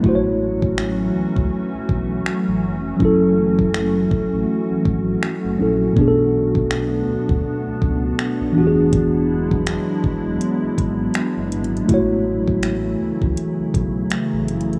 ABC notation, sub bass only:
X:1
M:4/4
L:1/16
Q:"Swing 16ths" 1/4=81
K:A
V:1 name="Sub bass" clef=bass
A,,,6 C,, C,, z B,,, B,,,2 z A,,, ^E,,,2 | F,,,6 A,,, A,,, z G,,, G,,,2 z F,,, ^A,,,2 | B,,,6 D,, D,, z C,, C,,2 z B,,, E,,,2- | E,,,6 E,,, E,,, z G,,, G,,,2 z F,,, G,,,2 |
A,,,6 C,, C,, z B,,, B,,,2 z A,,, ^E,,,2 |]